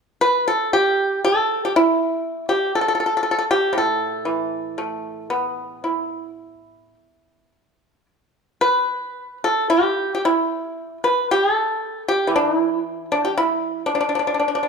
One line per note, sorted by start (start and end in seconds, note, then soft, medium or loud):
0.21 0.45 B4 medium
0.48 0.70 A4 medium
0.73 1.19 G4 medium
1.25 1.64 A4 medium
1.65 1.72 G4 medium
1.76 2.45 E4 medium
2.49 2.71 G4 medium
2.75 2.80 A4 medium
2.81 2.87 A4 soft
2.88 2.94 A4 soft
2.95 2.99 A4 soft
3.00 3.05 A4 soft
3.06 3.13 A4 soft
3.17 3.22 A4 soft
3.23 3.29 A4 soft
3.31 3.36 A4 soft
3.39 3.44 A4 soft
3.51 3.73 G4 medium
3.73 6.96 A2 soft
3.78 5.40 A4 medium
4.25 5.83 E3 soft
4.78 5.30 A3 soft
5.30 7.52 B3 soft
5.40 5.79 G#4 medium
5.79 6.94 G4 medium
5.84 8.06 E4 soft
8.61 9.37 B4 medium
9.44 9.67 A4 medium
9.70 10.12 G4 medium
10.15 10.21 G4 soft
10.25 10.97 E4 medium
11.04 11.26 B4 medium
11.31 11.52 G4 medium
11.52 12.02 A4 medium
12.08 12.30 G4 medium
12.27 14.68 E3 soft
12.36 12.57 D4 medium
12.57 13.05 E4 medium
13.12 13.26 D4 medium
13.25 13.31 G4 soft
13.37 13.82 E4 medium
13.86 13.91 D4 medium
13.95 13.99 D4 soft
14.01 14.05 D4 soft
14.09 14.13 D4 soft
14.15 14.18 D4 soft
14.19 14.25 D4 soft
14.27 14.32 D4 soft
14.34 14.38 D4 soft
14.40 14.45 D4 soft
14.48 14.53 D4 soft
14.55 14.60 D4 soft
14.63 14.68 D4 soft